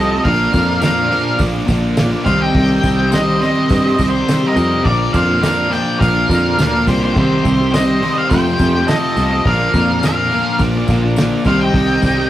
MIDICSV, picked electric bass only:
0, 0, Header, 1, 2, 480
1, 0, Start_track
1, 0, Tempo, 574713
1, 216, Time_signature, 4, 2, 24, 8
1, 10270, End_track
2, 0, Start_track
2, 0, Title_t, "Picked electric bass"
2, 0, Program_c, 0, 34
2, 0, Note_on_c, 0, 36, 88
2, 157, Note_off_c, 0, 36, 0
2, 213, Note_on_c, 0, 34, 94
2, 400, Note_off_c, 0, 34, 0
2, 452, Note_on_c, 0, 41, 90
2, 1010, Note_off_c, 0, 41, 0
2, 1165, Note_on_c, 0, 34, 106
2, 1355, Note_off_c, 0, 34, 0
2, 1408, Note_on_c, 0, 34, 102
2, 1782, Note_off_c, 0, 34, 0
2, 1891, Note_on_c, 0, 36, 80
2, 2079, Note_off_c, 0, 36, 0
2, 2126, Note_on_c, 0, 36, 101
2, 2316, Note_off_c, 0, 36, 0
2, 2370, Note_on_c, 0, 36, 94
2, 2929, Note_off_c, 0, 36, 0
2, 3096, Note_on_c, 0, 43, 90
2, 3281, Note_off_c, 0, 43, 0
2, 3335, Note_on_c, 0, 36, 95
2, 3521, Note_off_c, 0, 36, 0
2, 3810, Note_on_c, 0, 41, 87
2, 3998, Note_off_c, 0, 41, 0
2, 4055, Note_on_c, 0, 34, 96
2, 4241, Note_off_c, 0, 34, 0
2, 4295, Note_on_c, 0, 41, 91
2, 4852, Note_off_c, 0, 41, 0
2, 5020, Note_on_c, 0, 34, 111
2, 5204, Note_off_c, 0, 34, 0
2, 5258, Note_on_c, 0, 41, 95
2, 5473, Note_off_c, 0, 41, 0
2, 5497, Note_on_c, 0, 38, 81
2, 5713, Note_off_c, 0, 38, 0
2, 5738, Note_on_c, 0, 36, 87
2, 5954, Note_off_c, 0, 36, 0
2, 5983, Note_on_c, 0, 36, 97
2, 6166, Note_off_c, 0, 36, 0
2, 6215, Note_on_c, 0, 36, 92
2, 6772, Note_off_c, 0, 36, 0
2, 6942, Note_on_c, 0, 41, 101
2, 7125, Note_off_c, 0, 41, 0
2, 7180, Note_on_c, 0, 41, 94
2, 7364, Note_off_c, 0, 41, 0
2, 7655, Note_on_c, 0, 36, 91
2, 7841, Note_off_c, 0, 36, 0
2, 7898, Note_on_c, 0, 34, 101
2, 8083, Note_off_c, 0, 34, 0
2, 8134, Note_on_c, 0, 41, 96
2, 8691, Note_off_c, 0, 41, 0
2, 8847, Note_on_c, 0, 34, 107
2, 9036, Note_off_c, 0, 34, 0
2, 9092, Note_on_c, 0, 34, 110
2, 9464, Note_off_c, 0, 34, 0
2, 9568, Note_on_c, 0, 36, 81
2, 9756, Note_off_c, 0, 36, 0
2, 9806, Note_on_c, 0, 36, 94
2, 9995, Note_off_c, 0, 36, 0
2, 10042, Note_on_c, 0, 36, 97
2, 10270, Note_off_c, 0, 36, 0
2, 10270, End_track
0, 0, End_of_file